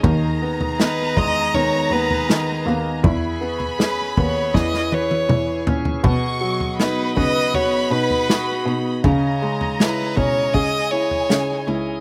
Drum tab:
SD |----o-------o---|----o---oo------|----o-------o---|----o-------o---|
T1 |----------------|----------oo----|----------------|----------------|
T2 |----------------|------------o---|----------------|----------------|
FT |o--o--o-o--o----|o--o--o-------oo|o--o--o-o--o----|o--o--o-o--o----|
BD |o-----o---------|o-----o-o-------|o-----o---------|o-----o-o-------|